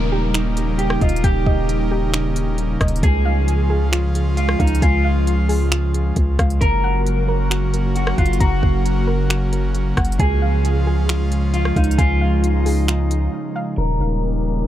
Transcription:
Already playing: 808-style bass D#1, analog synth pad C#3 G3 A#3 D#4, clean electric guitar A#4, synth pluck D#5 G5, downlifter
0.12 synth pluck G4
0.34 synth pluck D#4, finger snap, closed hi-hat
0.57 closed hi-hat
0.78 clean electric guitar G4, closed hi-hat
0.90 cross-stick
1.01 808-style bass D#1, clean electric guitar F4, synth pluck D#5, kick, closed hi-hat
1.09 closed hi-hat
1.16 closed hi-hat
1.24 808-style bass D#1, clean electric guitar G4, synth pluck G5, kick, closed hi-hat
1.46 808-style bass D#1, synth pluck D#5, kick
1.69 closed hi-hat
1.91 synth pluck G4
2.13 synth pluck D#4, finger snap, closed hi-hat
2.36 closed hi-hat
2.58 closed hi-hat
2.81 808-style bass D#1, synth pluck D#5, kick, cross-stick, closed hi-hat
2.88 closed hi-hat
2.96 closed hi-hat
3.03 808-style bass C#2, analog synth pad F3 G#3 F4, clean electric guitar G#4, synth pluck G#5, kick, closed hi-hat
3.25 synth pluck F5
3.48 closed hi-hat
3.70 synth pluck G#4
3.92 synth pluck F4, finger snap, closed hi-hat
4.15 closed hi-hat
4.37 clean electric guitar F4, closed hi-hat
4.49 cross-stick
4.59 808-style bass C#2, clean electric guitar D#4, synth pluck F5, kick, closed hi-hat
4.67 closed hi-hat
4.75 closed hi-hat
4.82 808-style bass C#2, clean electric guitar F4, synth pluck G#5, kick, closed hi-hat
5.04 synth pluck F5
5.27 closed hi-hat
5.49 synth pluck G#4, open hi-hat
5.71 synth pluck F4, finger snap, closed hi-hat
5.94 closed hi-hat
6.16 808-style bass C#2, kick, closed hi-hat
6.39 808-style bass C#2, synth pluck F5, kick, cross-stick, closed hi-hat
6.50 closed hi-hat
6.61 808-style bass F#1, analog synth pad C#3 F#3 A#3 F#4, clean electric guitar A#4, synth pluck A#5, kick, closed hi-hat
6.84 synth pluck F#5
7.07 closed hi-hat
7.28 synth pluck A#4
7.50 synth pluck F#4, finger snap, closed hi-hat
7.74 closed hi-hat
7.96 clean electric guitar F#4, closed hi-hat
8.07 cross-stick
8.18 808-style bass F#1, clean electric guitar F4, synth pluck F#5, kick, closed hi-hat
8.26 closed hi-hat
8.33 closed hi-hat
8.40 808-style bass F#1, clean electric guitar F#4, synth pluck A#5, kick, closed hi-hat
8.62 808-style bass F#1, synth pluck F#5, kick
8.86 closed hi-hat
9.07 synth pluck A#4
9.30 synth pluck F#4, finger snap, closed hi-hat
9.53 closed hi-hat
9.75 closed hi-hat
9.97 808-style bass F#1, synth pluck F#5, kick, cross-stick, closed hi-hat
10.05 closed hi-hat
10.12 closed hi-hat
10.19 808-style bass C#2, analog synth pad F3 G#3 F4, clean electric guitar G#4, synth pluck G#5, kick, closed hi-hat
10.42 synth pluck F5
10.65 closed hi-hat
10.87 synth pluck G#4
11.09 synth pluck F4, finger snap, closed hi-hat
11.32 closed hi-hat
11.54 clean electric guitar F4, closed hi-hat
11.65 cross-stick
11.76 808-style bass C#2, clean electric guitar D#4, synth pluck F5, kick, closed hi-hat
11.84 closed hi-hat
11.91 closed hi-hat
11.98 808-style bass C#2, analog synth pad D#4, clean electric guitar F4, synth pluck G#5, kick, closed hi-hat
12.21 synth pluck F5
12.44 closed hi-hat
12.66 synth pluck G#4, open hi-hat
12.88 synth pluck F4, finger snap, closed hi-hat
13.11 closed hi-hat
13.56 synth pluck F5
13.78 808-style bass D#1, analog synth pad C#3 G3 A#3 D#4, clean electric guitar A#4
14.00 808-style bass D#1

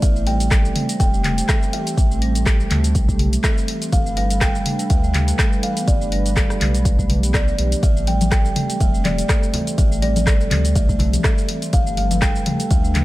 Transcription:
0.02 sub bass A1, analog synth pad A3 C4 G4, kalimba E5, kick, closed hi-hat, shaker
0.16 marimba A3, shaker
0.27 marimba G3, kalimba G5, open hi-hat
0.40 closed hi-hat, shaker
0.51 marimba A4, kick, cross-stick, clap, closed hi-hat, shaker
0.65 shaker
0.76 marimba A3, open hi-hat, mid tom
0.89 marimba G3, closed hi-hat, shaker
1.00 sub bass E1, kalimba G5, kick, closed hi-hat, shaker
1.14 marimba A3, shaker
1.24 marimba A3, clap, open hi-hat, mid tom
1.38 closed hi-hat, shaker
1.49 marimba A4, kalimba E5, kick, cross-stick, clap, closed hi-hat, shaker
1.63 shaker
1.73 marimba E3, kalimba E5, open hi-hat
1.87 marimba C4, closed hi-hat, shaker
1.97 sub bass A1, kick, closed hi-hat, shaker
2.11 marimba A3, shaker
2.22 marimba G3, open hi-hat
2.35 closed hi-hat, shaker
2.46 marimba A4, kick, cross-stick, clap, closed hi-hat, shaker
2.60 shaker
2.71 sub bass D2, marimba A3, clap, open hi-hat, mid tom
2.84 marimba G3, closed hi-hat, shaker
2.95 sub bass B1, kick, closed hi-hat, shaker
3.09 marimba A3, kick, shaker
3.19 marimba A3, open hi-hat, mid tom
3.33 closed hi-hat, shaker
3.44 marimba A4, kalimba E5, kick, cross-stick, clap, closed hi-hat, shaker
3.58 shaker
3.68 marimba E3, open hi-hat
3.82 marimba C4, closed hi-hat, shaker
3.92 sub bass G1, analog synth pad G3 D4 A4 B4, kalimba F5, kick, closed hi-hat, shaker
4.06 marimba A3, shaker
4.17 marimba G3, kalimba F5, open hi-hat
4.30 closed hi-hat, shaker
4.41 marimba A4, kalimba G5, kick, cross-stick, clap, closed hi-hat, shaker
4.55 shaker
4.66 marimba A3, open hi-hat, mid tom
4.79 marimba G3, closed hi-hat, shaker
4.90 sub bass D2, kalimba E5, kick, closed hi-hat, shaker
5.04 marimba A3, shaker
5.14 marimba A3, clap, open hi-hat, mid tom
5.28 closed hi-hat, shaker
5.39 marimba A4, kick, cross-stick, clap, closed hi-hat, shaker
5.53 shaker
5.63 marimba E3, kalimba F5, open hi-hat
5.77 marimba B3, closed hi-hat, shaker
5.88 sub bass G1, analog synth pad G4, kalimba D5, kick, closed hi-hat, shaker
6.01 marimba A3, shaker
6.12 marimba G3, open hi-hat
6.26 closed hi-hat, shaker
6.36 marimba A4, kick, cross-stick, clap, closed hi-hat, shaker
6.50 cross-stick, shaker
6.61 sub bass B1, marimba A3, clap, open hi-hat, mid tom
6.75 marimba G3, closed hi-hat, shaker
6.85 kick, closed hi-hat, shaker
6.99 marimba A3, kick, shaker
7.10 marimba E3, open hi-hat, mid tom
7.23 marimba B3, closed hi-hat, shaker
7.34 sub bass B1, kalimba D5, kick, cross-stick, clap, closed hi-hat, shaker
7.48 marimba E3, shaker
7.58 sub bass B1, marimba G4, open hi-hat
7.72 closed hi-hat, shaker
7.83 sub bass A1, analog synth pad A3 C4, kalimba E5, kick, closed hi-hat, muted conga, shaker
7.97 marimba A3, shaker
8.07 marimba G3, kalimba G5, open hi-hat, high conga
8.21 closed hi-hat, muted conga, high conga, shaker
8.32 marimba A4, kalimba G5, kick, cross-stick, clap, closed hi-hat, shaker
8.45 muted conga, shaker
8.56 marimba A3, open hi-hat, mid tom, high conga, low conga
8.70 marimba G3, closed hi-hat, muted conga, shaker
8.80 sub bass E1, kalimba E5, kick, closed hi-hat, high conga, shaker
8.94 marimba A3, shaker
9.04 marimba A3, kalimba D5, clap, open hi-hat, mid tom, muted conga, high conga
9.18 closed hi-hat, shaker
9.29 marimba A4, kick, cross-stick, clap, closed hi-hat, muted conga, shaker
9.43 shaker
9.54 marimba E3, open hi-hat, muted conga, high conga, low conga
9.67 marimba C4, closed hi-hat, shaker
9.78 sub bass A1, kalimba E5, kick, closed hi-hat, muted conga, shaker
9.92 marimba A3, shaker
10.02 marimba G3, kalimba D5, open hi-hat, high conga
10.16 closed hi-hat, muted conga, high conga, shaker
10.27 marimba A4, kick, cross-stick, clap, closed hi-hat, shaker
10.40 muted conga, shaker
10.51 sub bass D2, marimba A3, clap, open hi-hat, mid tom, high conga, low conga
10.65 marimba G3, closed hi-hat, muted conga, shaker
10.75 sub bass B1, kalimba E5, kick, closed hi-hat, shaker
10.89 marimba A3, kick, shaker
10.99 marimba A3, open hi-hat, mid tom, muted conga, low conga
11.13 closed hi-hat, high conga, shaker
11.24 marimba A4, kalimba E5, kick, cross-stick, clap, closed hi-hat, muted conga, shaker
11.38 shaker
11.49 marimba E3, open hi-hat, muted conga
11.62 marimba C4, closed hi-hat, shaker
11.73 sub bass G1, analog synth pad G3 D4 A4 B4, kalimba F5, kick, closed hi-hat, muted conga, shaker
11.87 marimba A3, shaker
11.97 marimba G3, kalimba F5, open hi-hat, high conga
12.11 closed hi-hat, muted conga, high conga, shaker
12.22 marimba A4, kalimba G5, kick, cross-stick, clap, closed hi-hat, shaker
12.35 muted conga, shaker
12.46 marimba A3, open hi-hat, mid tom, high conga, low conga
12.60 marimba G3, closed hi-hat, muted conga, shaker
12.71 sub bass D2, kalimba E5, kick, closed hi-hat, high conga, shaker
12.84 marimba A3, shaker
12.94 marimba A3, clap, open hi-hat, mid tom, muted conga, high conga

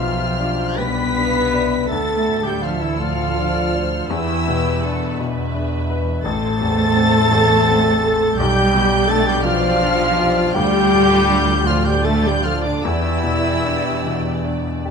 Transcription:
Already playing: grand piano B1, double bass section B1, french horn section F3, cello section F3, viola section F4, clarinet F4, violin section G4 E5 F6, flute F5
0.00 grand piano B2
0.39 grand piano D4
0.77 double bass section C2, grand piano B2, cello section B3, clarinet B4, viola section B4, violin section D5 B6, flute B5
0.81 french horn section B3
1.15 grand piano D4, violin section F5
1.54 grand piano D5, violin section E5
1.88 double bass section D2, grand piano D2, french horn section A3, cello section A3, clarinet A4, viola section A4, violin section A4 A6, flute A5
2.28 grand piano A2
2.43 french horn section G3, cello section G3, clarinet G4, viola section G4, flute G5, violin section G6
2.62 french horn section F3, cello section F3, grand piano D4, viola section F4, clarinet F4, flute F5, violin section F6
2.79 french horn section E3, cello section E3, viola section E4, clarinet E4, flute E5, violin section E6
2.99 grand piano A2, french horn section F3, cello section F3, viola section F4, clarinet F4, violin section D5 F6, flute F5
3.37 grand piano D4, violin section D5
3.74 violin section C5, grand piano D5
4.08 double bass section E2, grand piano E2, cello section E3, french horn section E3, viola section E4, clarinet E4, violin section G4 B4 E6, flute E5
4.46 grand piano B2, violin section G4
4.83 grand piano D4, violin section A4
5.18 grand piano B2, violin section B4 E5
5.55 grand piano D4
5.90 grand piano B4
6.22 double bass section A1, grand piano A1, cello section A3, french horn section A3, viola section A4, clarinet A4, violin section A4 C5 A6, flute A5
6.61 grand piano E2
6.97 grand piano C4
7.32 grand piano E2
7.68 grand piano C4
8.04 grand piano A4
8.37 double bass section B1, grand piano B1, cello section G3, french horn section G3, viola section G4, violin section G4 D5 G6, clarinet G4, flute G5
8.74 grand piano B2
9.08 french horn section A3, cello section A3, grand piano D4, viola section A4, clarinet A4, flute A5, violin section A6
9.26 french horn section G3, cello section G3, viola section G4, clarinet G4, flute G5, violin section G6
9.43 grand piano B2, french horn section F3, cello section F3, viola section F4, clarinet F4, flute F5, violin section F6
9.82 grand piano D4
10.19 grand piano G4
10.54 double bass section D2, grand piano D2, french horn section G3, cello section G3, violin section F4 D5 G6, viola section G4, clarinet G4, flute G5
10.92 grand piano A2
11.30 grand piano D4
11.66 grand piano A2, cello section F3, french horn section F3, clarinet F4, viola section F4, violin section F4 D5 F6, flute F5
11.84 french horn section G3, cello section G3, viola section G4, clarinet G4, flute G5, violin section G6
12.04 french horn section A3, cello section A3, grand piano D4, viola section A4, clarinet A4, flute A5, violin section A6
12.23 cello section G3, clarinet G4, viola section G4, violin section G6
12.27 french horn section G3, flute G5
12.43 cello section F3, french horn section F3, viola section F4, clarinet F4, grand piano A4, flute F5, violin section F6
12.62 cello section D3, french horn section D3, viola section D4, clarinet D4, violin section D6
12.67 flute D5
12.83 double bass section E2, grand piano E2, french horn section E3, cello section E3, viola section E4, clarinet E4, violin section G4 D5 E6, flute E5
13.24 grand piano B2
13.65 grand piano D4
14.06 grand piano B2
14.45 grand piano D4
14.85 grand piano G4

